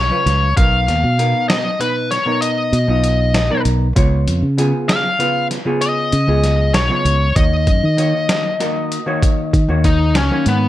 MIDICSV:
0, 0, Header, 1, 5, 480
1, 0, Start_track
1, 0, Tempo, 617920
1, 444, Time_signature, 11, 3, 24, 8
1, 8300, End_track
2, 0, Start_track
2, 0, Title_t, "Lead electric guitar"
2, 0, Program_c, 0, 29
2, 0, Note_on_c, 0, 73, 77
2, 415, Note_off_c, 0, 73, 0
2, 443, Note_on_c, 0, 77, 93
2, 1130, Note_off_c, 0, 77, 0
2, 1154, Note_on_c, 0, 75, 74
2, 1403, Note_on_c, 0, 71, 68
2, 1404, Note_off_c, 0, 75, 0
2, 1624, Note_off_c, 0, 71, 0
2, 1638, Note_on_c, 0, 73, 75
2, 1862, Note_off_c, 0, 73, 0
2, 1880, Note_on_c, 0, 75, 81
2, 2806, Note_off_c, 0, 75, 0
2, 3795, Note_on_c, 0, 77, 90
2, 4245, Note_off_c, 0, 77, 0
2, 4516, Note_on_c, 0, 75, 103
2, 5238, Note_off_c, 0, 75, 0
2, 5241, Note_on_c, 0, 73, 100
2, 5719, Note_off_c, 0, 73, 0
2, 5722, Note_on_c, 0, 75, 85
2, 7653, Note_on_c, 0, 63, 77
2, 7857, Note_off_c, 0, 75, 0
2, 7893, Note_on_c, 0, 61, 77
2, 7897, Note_off_c, 0, 63, 0
2, 8114, Note_off_c, 0, 61, 0
2, 8141, Note_on_c, 0, 59, 69
2, 8300, Note_off_c, 0, 59, 0
2, 8300, End_track
3, 0, Start_track
3, 0, Title_t, "Hollow-body jazz guitar"
3, 0, Program_c, 1, 26
3, 82, Note_on_c, 1, 49, 60
3, 86, Note_on_c, 1, 61, 60
3, 90, Note_on_c, 1, 65, 64
3, 93, Note_on_c, 1, 71, 74
3, 373, Note_off_c, 1, 49, 0
3, 375, Note_off_c, 1, 61, 0
3, 377, Note_off_c, 1, 65, 0
3, 379, Note_off_c, 1, 71, 0
3, 440, Note_on_c, 1, 47, 59
3, 444, Note_on_c, 1, 59, 54
3, 448, Note_on_c, 1, 63, 54
3, 451, Note_on_c, 1, 70, 61
3, 828, Note_off_c, 1, 47, 0
3, 830, Note_off_c, 1, 59, 0
3, 831, Note_off_c, 1, 63, 0
3, 833, Note_off_c, 1, 70, 0
3, 917, Note_on_c, 1, 47, 70
3, 924, Note_on_c, 1, 59, 57
3, 926, Note_on_c, 1, 63, 64
3, 930, Note_on_c, 1, 70, 66
3, 1306, Note_off_c, 1, 47, 0
3, 1309, Note_off_c, 1, 59, 0
3, 1311, Note_off_c, 1, 63, 0
3, 1311, Note_off_c, 1, 70, 0
3, 1392, Note_on_c, 1, 47, 64
3, 1396, Note_on_c, 1, 59, 56
3, 1402, Note_on_c, 1, 63, 52
3, 1403, Note_on_c, 1, 71, 62
3, 1686, Note_off_c, 1, 47, 0
3, 1688, Note_off_c, 1, 59, 0
3, 1689, Note_off_c, 1, 63, 0
3, 1691, Note_off_c, 1, 71, 0
3, 1751, Note_on_c, 1, 47, 70
3, 1755, Note_on_c, 1, 59, 65
3, 1760, Note_on_c, 1, 63, 68
3, 1764, Note_on_c, 1, 70, 82
3, 2142, Note_off_c, 1, 47, 0
3, 2143, Note_off_c, 1, 59, 0
3, 2146, Note_off_c, 1, 63, 0
3, 2148, Note_off_c, 1, 70, 0
3, 2232, Note_on_c, 1, 47, 70
3, 2235, Note_on_c, 1, 59, 63
3, 2238, Note_on_c, 1, 63, 63
3, 2243, Note_on_c, 1, 65, 73
3, 2621, Note_off_c, 1, 47, 0
3, 2623, Note_off_c, 1, 59, 0
3, 2624, Note_off_c, 1, 63, 0
3, 2627, Note_off_c, 1, 65, 0
3, 2716, Note_on_c, 1, 47, 72
3, 2721, Note_on_c, 1, 59, 78
3, 2721, Note_on_c, 1, 63, 75
3, 2725, Note_on_c, 1, 70, 89
3, 3007, Note_off_c, 1, 47, 0
3, 3008, Note_off_c, 1, 59, 0
3, 3009, Note_off_c, 1, 63, 0
3, 3011, Note_off_c, 1, 70, 0
3, 3072, Note_on_c, 1, 49, 77
3, 3076, Note_on_c, 1, 59, 70
3, 3080, Note_on_c, 1, 65, 70
3, 3085, Note_on_c, 1, 73, 83
3, 3461, Note_off_c, 1, 49, 0
3, 3463, Note_off_c, 1, 59, 0
3, 3465, Note_off_c, 1, 65, 0
3, 3468, Note_off_c, 1, 73, 0
3, 3554, Note_on_c, 1, 49, 73
3, 3556, Note_on_c, 1, 59, 77
3, 3562, Note_on_c, 1, 65, 72
3, 3564, Note_on_c, 1, 68, 82
3, 3942, Note_off_c, 1, 49, 0
3, 3943, Note_off_c, 1, 59, 0
3, 3946, Note_off_c, 1, 65, 0
3, 3947, Note_off_c, 1, 68, 0
3, 4030, Note_on_c, 1, 49, 68
3, 4033, Note_on_c, 1, 59, 64
3, 4037, Note_on_c, 1, 65, 63
3, 4039, Note_on_c, 1, 71, 82
3, 4323, Note_off_c, 1, 49, 0
3, 4325, Note_off_c, 1, 59, 0
3, 4326, Note_off_c, 1, 65, 0
3, 4328, Note_off_c, 1, 71, 0
3, 4390, Note_on_c, 1, 49, 77
3, 4395, Note_on_c, 1, 65, 75
3, 4396, Note_on_c, 1, 59, 77
3, 4400, Note_on_c, 1, 68, 89
3, 4781, Note_off_c, 1, 49, 0
3, 4782, Note_off_c, 1, 59, 0
3, 4783, Note_off_c, 1, 65, 0
3, 4785, Note_off_c, 1, 68, 0
3, 4870, Note_on_c, 1, 49, 71
3, 4876, Note_on_c, 1, 59, 62
3, 4877, Note_on_c, 1, 65, 64
3, 4884, Note_on_c, 1, 68, 79
3, 5261, Note_off_c, 1, 49, 0
3, 5263, Note_off_c, 1, 59, 0
3, 5265, Note_off_c, 1, 65, 0
3, 5266, Note_off_c, 1, 68, 0
3, 5351, Note_on_c, 1, 49, 69
3, 5355, Note_on_c, 1, 59, 64
3, 5359, Note_on_c, 1, 65, 60
3, 5361, Note_on_c, 1, 73, 84
3, 5645, Note_off_c, 1, 49, 0
3, 5647, Note_off_c, 1, 59, 0
3, 5648, Note_off_c, 1, 65, 0
3, 5650, Note_off_c, 1, 73, 0
3, 5714, Note_on_c, 1, 51, 58
3, 5718, Note_on_c, 1, 58, 55
3, 5722, Note_on_c, 1, 66, 54
3, 5727, Note_on_c, 1, 73, 65
3, 6104, Note_off_c, 1, 51, 0
3, 6106, Note_off_c, 1, 58, 0
3, 6108, Note_off_c, 1, 66, 0
3, 6109, Note_off_c, 1, 73, 0
3, 6192, Note_on_c, 1, 51, 72
3, 6197, Note_on_c, 1, 58, 66
3, 6202, Note_on_c, 1, 66, 64
3, 6203, Note_on_c, 1, 73, 69
3, 6584, Note_off_c, 1, 51, 0
3, 6586, Note_off_c, 1, 58, 0
3, 6588, Note_off_c, 1, 66, 0
3, 6589, Note_off_c, 1, 73, 0
3, 6676, Note_on_c, 1, 51, 72
3, 6681, Note_on_c, 1, 58, 72
3, 6685, Note_on_c, 1, 66, 73
3, 6688, Note_on_c, 1, 70, 75
3, 6969, Note_off_c, 1, 51, 0
3, 6972, Note_off_c, 1, 58, 0
3, 6974, Note_off_c, 1, 66, 0
3, 6975, Note_off_c, 1, 70, 0
3, 7039, Note_on_c, 1, 51, 85
3, 7042, Note_on_c, 1, 58, 80
3, 7046, Note_on_c, 1, 66, 82
3, 7049, Note_on_c, 1, 73, 98
3, 7429, Note_off_c, 1, 51, 0
3, 7431, Note_off_c, 1, 58, 0
3, 7432, Note_off_c, 1, 66, 0
3, 7434, Note_off_c, 1, 73, 0
3, 7523, Note_on_c, 1, 51, 77
3, 7527, Note_on_c, 1, 58, 68
3, 7531, Note_on_c, 1, 66, 76
3, 7534, Note_on_c, 1, 73, 86
3, 7912, Note_off_c, 1, 51, 0
3, 7914, Note_off_c, 1, 58, 0
3, 7916, Note_off_c, 1, 66, 0
3, 7918, Note_off_c, 1, 73, 0
3, 8008, Note_on_c, 1, 51, 79
3, 8011, Note_on_c, 1, 58, 76
3, 8016, Note_on_c, 1, 66, 74
3, 8018, Note_on_c, 1, 73, 81
3, 8299, Note_off_c, 1, 51, 0
3, 8300, Note_off_c, 1, 58, 0
3, 8300, Note_off_c, 1, 66, 0
3, 8300, Note_off_c, 1, 73, 0
3, 8300, End_track
4, 0, Start_track
4, 0, Title_t, "Fingered electric bass"
4, 0, Program_c, 2, 33
4, 202, Note_on_c, 2, 37, 91
4, 431, Note_off_c, 2, 37, 0
4, 445, Note_on_c, 2, 35, 88
4, 672, Note_off_c, 2, 35, 0
4, 685, Note_on_c, 2, 39, 70
4, 797, Note_off_c, 2, 39, 0
4, 805, Note_on_c, 2, 47, 81
4, 1031, Note_off_c, 2, 47, 0
4, 2117, Note_on_c, 2, 47, 83
4, 2232, Note_off_c, 2, 47, 0
4, 2238, Note_on_c, 2, 35, 77
4, 2595, Note_off_c, 2, 35, 0
4, 2595, Note_on_c, 2, 34, 91
4, 2710, Note_off_c, 2, 34, 0
4, 2837, Note_on_c, 2, 35, 93
4, 3065, Note_off_c, 2, 35, 0
4, 3078, Note_on_c, 2, 37, 80
4, 3305, Note_off_c, 2, 37, 0
4, 3319, Note_on_c, 2, 41, 79
4, 3432, Note_off_c, 2, 41, 0
4, 3436, Note_on_c, 2, 49, 75
4, 3664, Note_off_c, 2, 49, 0
4, 4760, Note_on_c, 2, 49, 90
4, 4872, Note_off_c, 2, 49, 0
4, 4877, Note_on_c, 2, 37, 76
4, 5235, Note_off_c, 2, 37, 0
4, 5235, Note_on_c, 2, 35, 89
4, 5350, Note_off_c, 2, 35, 0
4, 5476, Note_on_c, 2, 37, 93
4, 5705, Note_off_c, 2, 37, 0
4, 5718, Note_on_c, 2, 39, 94
4, 5946, Note_off_c, 2, 39, 0
4, 5959, Note_on_c, 2, 42, 74
4, 6073, Note_off_c, 2, 42, 0
4, 6085, Note_on_c, 2, 51, 82
4, 6310, Note_off_c, 2, 51, 0
4, 7406, Note_on_c, 2, 51, 79
4, 7519, Note_off_c, 2, 51, 0
4, 7524, Note_on_c, 2, 39, 72
4, 7887, Note_off_c, 2, 39, 0
4, 7887, Note_on_c, 2, 37, 85
4, 8000, Note_off_c, 2, 37, 0
4, 8127, Note_on_c, 2, 44, 90
4, 8300, Note_off_c, 2, 44, 0
4, 8300, End_track
5, 0, Start_track
5, 0, Title_t, "Drums"
5, 207, Note_on_c, 9, 38, 33
5, 207, Note_on_c, 9, 42, 55
5, 285, Note_off_c, 9, 38, 0
5, 285, Note_off_c, 9, 42, 0
5, 445, Note_on_c, 9, 36, 102
5, 445, Note_on_c, 9, 42, 74
5, 522, Note_off_c, 9, 36, 0
5, 522, Note_off_c, 9, 42, 0
5, 687, Note_on_c, 9, 38, 29
5, 687, Note_on_c, 9, 42, 48
5, 764, Note_off_c, 9, 38, 0
5, 764, Note_off_c, 9, 42, 0
5, 926, Note_on_c, 9, 42, 51
5, 1004, Note_off_c, 9, 42, 0
5, 1163, Note_on_c, 9, 38, 102
5, 1163, Note_on_c, 9, 42, 69
5, 1241, Note_off_c, 9, 38, 0
5, 1241, Note_off_c, 9, 42, 0
5, 1404, Note_on_c, 9, 42, 57
5, 1481, Note_off_c, 9, 42, 0
5, 1643, Note_on_c, 9, 38, 32
5, 1643, Note_on_c, 9, 42, 50
5, 1721, Note_off_c, 9, 38, 0
5, 1721, Note_off_c, 9, 42, 0
5, 1881, Note_on_c, 9, 42, 78
5, 1959, Note_off_c, 9, 42, 0
5, 2122, Note_on_c, 9, 42, 53
5, 2200, Note_off_c, 9, 42, 0
5, 2359, Note_on_c, 9, 42, 58
5, 2436, Note_off_c, 9, 42, 0
5, 2598, Note_on_c, 9, 38, 84
5, 2598, Note_on_c, 9, 42, 67
5, 2676, Note_off_c, 9, 38, 0
5, 2676, Note_off_c, 9, 42, 0
5, 2837, Note_on_c, 9, 42, 60
5, 2915, Note_off_c, 9, 42, 0
5, 3078, Note_on_c, 9, 36, 100
5, 3080, Note_on_c, 9, 42, 85
5, 3156, Note_off_c, 9, 36, 0
5, 3157, Note_off_c, 9, 42, 0
5, 3322, Note_on_c, 9, 42, 62
5, 3399, Note_off_c, 9, 42, 0
5, 3561, Note_on_c, 9, 42, 59
5, 3639, Note_off_c, 9, 42, 0
5, 3800, Note_on_c, 9, 38, 108
5, 3800, Note_on_c, 9, 42, 81
5, 3878, Note_off_c, 9, 38, 0
5, 3878, Note_off_c, 9, 42, 0
5, 4039, Note_on_c, 9, 42, 56
5, 4116, Note_off_c, 9, 42, 0
5, 4279, Note_on_c, 9, 38, 30
5, 4279, Note_on_c, 9, 42, 57
5, 4357, Note_off_c, 9, 38, 0
5, 4357, Note_off_c, 9, 42, 0
5, 4517, Note_on_c, 9, 42, 73
5, 4595, Note_off_c, 9, 42, 0
5, 4758, Note_on_c, 9, 42, 58
5, 4835, Note_off_c, 9, 42, 0
5, 4999, Note_on_c, 9, 38, 31
5, 4999, Note_on_c, 9, 42, 55
5, 5077, Note_off_c, 9, 38, 0
5, 5077, Note_off_c, 9, 42, 0
5, 5238, Note_on_c, 9, 38, 91
5, 5238, Note_on_c, 9, 42, 60
5, 5316, Note_off_c, 9, 38, 0
5, 5316, Note_off_c, 9, 42, 0
5, 5481, Note_on_c, 9, 42, 59
5, 5559, Note_off_c, 9, 42, 0
5, 5718, Note_on_c, 9, 42, 70
5, 5719, Note_on_c, 9, 36, 101
5, 5796, Note_off_c, 9, 42, 0
5, 5797, Note_off_c, 9, 36, 0
5, 5958, Note_on_c, 9, 42, 49
5, 5960, Note_on_c, 9, 36, 66
5, 6036, Note_off_c, 9, 42, 0
5, 6037, Note_off_c, 9, 36, 0
5, 6201, Note_on_c, 9, 42, 58
5, 6279, Note_off_c, 9, 42, 0
5, 6441, Note_on_c, 9, 38, 98
5, 6441, Note_on_c, 9, 42, 75
5, 6518, Note_off_c, 9, 38, 0
5, 6518, Note_off_c, 9, 42, 0
5, 6684, Note_on_c, 9, 38, 33
5, 6684, Note_on_c, 9, 42, 60
5, 6762, Note_off_c, 9, 38, 0
5, 6762, Note_off_c, 9, 42, 0
5, 6927, Note_on_c, 9, 42, 58
5, 7005, Note_off_c, 9, 42, 0
5, 7166, Note_on_c, 9, 36, 90
5, 7169, Note_on_c, 9, 42, 77
5, 7244, Note_off_c, 9, 36, 0
5, 7247, Note_off_c, 9, 42, 0
5, 7406, Note_on_c, 9, 36, 77
5, 7409, Note_on_c, 9, 42, 59
5, 7484, Note_off_c, 9, 36, 0
5, 7487, Note_off_c, 9, 42, 0
5, 7646, Note_on_c, 9, 42, 59
5, 7647, Note_on_c, 9, 36, 64
5, 7724, Note_off_c, 9, 36, 0
5, 7724, Note_off_c, 9, 42, 0
5, 7885, Note_on_c, 9, 38, 89
5, 7885, Note_on_c, 9, 42, 69
5, 7963, Note_off_c, 9, 38, 0
5, 7963, Note_off_c, 9, 42, 0
5, 8125, Note_on_c, 9, 42, 62
5, 8203, Note_off_c, 9, 42, 0
5, 8300, End_track
0, 0, End_of_file